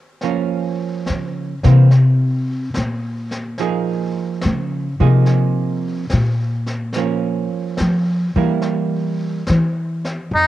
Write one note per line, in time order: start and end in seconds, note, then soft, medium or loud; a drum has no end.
0.21 1.53 F3 soft
0.21 1.53 A#3 soft
0.21 1.53 C#4 soft
0.21 brush sweep soft
0.21 snare soft
1.06 1.64 C#3 medium
1.06 snare soft
1.63 2.71 C3 medium
1.63 1.88 E3 soft
1.63 1.88 A#3 soft
1.63 1.89 C4 soft
1.63 snare soft
1.91 brush sweep soft
1.91 snare soft
2.74 4.13 A#2 medium
2.74 snare soft
3.31 snare soft
3.58 4.88 F3 soft
3.58 4.88 A#3 soft
3.58 4.88 D#4 soft
3.58 4.88 G#4 soft
3.58 brush sweep soft
3.58 snare soft
4.41 4.99 C#3 medium
4.41 snare soft
5.00 6.06 C3 medium
5.00 6.05 F3 soft
5.00 6.05 A#3 soft
5.00 6.05 D#4 soft
5.00 6.06 G#4 soft
5.26 brush sweep soft
5.26 snare soft
6.10 7.48 A#2 medium
6.10 snare soft
6.66 snare soft
6.93 8.25 F3 soft
6.93 brush sweep soft
6.93 snare soft
6.97 8.25 A#3 soft
6.97 8.25 C#4 soft
7.77 8.35 F3 medium
7.77 snare soft
8.36 9.44 E3 medium
8.36 9.42 G3 soft
8.36 9.43 A#3 soft
8.36 9.43 E4 soft
8.62 brush sweep soft
8.62 snare soft
9.47 10.16 E3 medium
9.47 snare soft
10.05 snare soft
10.31 10.47 F2 medium
10.31 brush sweep soft
10.36 10.47 D#4 medium